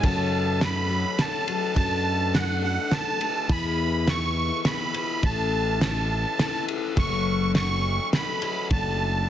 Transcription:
0.02 twelve-string acoustic guitar F#2 C#3 F#3 A3 C#4 A4, fingered electric bass F#2, accordion A5, kick, ride
0.60 twelve-string acoustic guitar F#3 A3 C#4 A4, accordion B5, snare, ride
0.88 twelve-string acoustic guitar F#3 A3 C#4 A4
1.17 twelve-string acoustic guitar F#3 A3 C#4 A4, accordion A5, snare, ride
1.48 twelve-string acoustic guitar F#3 A3 C#4 A4, ride
1.74 fingered electric bass F#2, twelve-string acoustic guitar F#3 A3 D4 A4, accordion A5, kick, ride
2.33 twelve-string acoustic guitar F#3 A3 D4 A4, accordion F#5, snare, ride
2.62 twelve-string acoustic guitar A3 D4 A4, accordion F#5
2.91 twelve-string acoustic guitar F#3 A3 D4 A4, accordion A5, snare, ride
3.20 twelve-string acoustic guitar A3 D4 A4, ride
3.49 fingered electric bass E2, twelve-string acoustic guitar E3 B3 E4 G#4, accordion B5, kick, ride
4.06 twelve-string acoustic guitar E3 B3 E4 G#4, accordion C#6, snare, ride
4.64 twelve-string acoustic guitar E3 B3 E4 G#4, accordion B5, snare, ride
4.93 twelve-string acoustic guitar B3 E4 G#4, ride
5.23 fingered electric bass A1, twelve-string acoustic guitar A2 E3 A3 C#4 E4 A4, accordion A5, kick, ride
5.80 twelve-string acoustic guitar A3 C#4 E4 A4, accordion A5, snare, ride
6.38 twelve-string acoustic guitar A3 C#4 E4 A4, snare, ride
6.68 ride
6.96 fingered electric bass F#1, twelve-string acoustic guitar F#2 C#3 F#3 A3 C#4 A4, accordion C#6, kick, ride
7.54 twelve-string acoustic guitar F#3 A3 C#4 A4, accordion C#6, snare, ride
8.12 twelve-string acoustic guitar F#3 A3 C#4 A4, accordion B5, snare, ride
8.42 twelve-string acoustic guitar F#3 A3 C#4 A4, ride
8.71 fingered electric bass F#1, twelve-string acoustic guitar F#3 A3 D4 A4, accordion A5, kick, ride

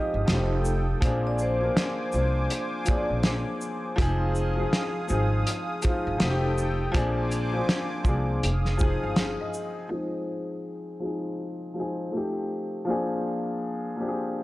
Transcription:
Already playing: upright piano F3 G#3 C4 D#4 F4 G4 G#4, analog synth pad G#3 F5 D#6, vibraphone D#5
0.14 upright bass G1
0.26 upright bass F1, upright piano F3 A3 C4, analog synth pad A4 G5, snare, closed hi-hat
0.30 upright piano D#4 G4
0.65 shaker
1.00 upright bass A#1, upright piano F3 A#3 C4, analog synth pad C5 G#5 D6, kick, closed hi-hat
1.05 upright piano D4 G#4
1.27 vibraphone D5
1.39 vibraphone C5, shaker
1.59 upright piano F3 A#3 C4
1.63 upright piano D4 A#4
1.77 snare, closed hi-hat
2.12 upright bass C2, upright piano F3 A#3 C4, vibraphone C5, shaker
2.17 upright piano D4 F4
2.50 closed hi-hat
2.85 upright piano F3 A#3 C4, kick, closed hi-hat, shaker
2.89 upright piano C#4 G#4, vibraphone D5
2.96 upright piano D4
3.10 upright bass A#1
3.23 snare, closed hi-hat
3.61 shaker
3.96 upright bass F1, upright piano F3 G#3 C4 D#4, analog synth pad G#4 F5 D#6, kick, closed hi-hat
4.01 upright piano G#4
4.35 shaker
4.55 upright piano F3 G#3 C4 D#4
4.61 upright piano G#4
4.73 snare, closed hi-hat
5.07 upright bass G#1, upright piano F3 G#3 C4, shaker
5.11 upright piano D#4 G#4
5.47 closed hi-hat
5.82 upright piano F3 G#3 C4, kick, closed hi-hat, shaker
5.86 upright piano D#4 F4
6.07 upright bass G1
6.18 upright bass F1, upright piano F3 A3 C4 D#4, analog synth pad A4 G5, snare, closed hi-hat
6.24 upright piano F#4
6.30 upright piano G4
6.58 shaker
6.92 upright bass A#1, upright piano F3 A#3 C4 D4, analog synth pad C5 G#5 D6, kick, closed hi-hat
6.97 upright piano G#4
7.31 closed hi-hat, shaker
7.52 upright piano F3 A#3 C4
7.56 upright piano D4 G#4
7.69 snare, closed hi-hat
8.03 upright bass C2, upright piano F3 A#3 C4, kick, shaker
8.07 upright piano D4 G#4
8.42 upright bass F1, analog synth pad G#4 F5 D#6, closed hi-hat
8.65 snare
8.77 upright piano F3 G#3 C4 G#5, kick, shaker
8.82 upright piano D#4 G#4
9.03 upright bass G1, upright piano F5
9.16 upright piano F5, snare, closed hi-hat
9.41 upright piano D#5
9.54 shaker
9.89 upright piano F3 G#3 C4
9.93 upright piano D#4 G#4
11.00 upright piano F3 G#3 C4 D#4
11.05 upright piano G#4
11.74 upright piano F3 G#3 C4
11.78 upright piano D#4 G#4
12.11 upright piano F3 A3 C4
12.16 upright piano D#4 G4
12.85 upright piano F3 A#3 C4
12.89 upright piano D4 G#4
13.96 upright piano F3 A#3 C4
14.00 upright piano D4 G4
14.08 upright piano G#4

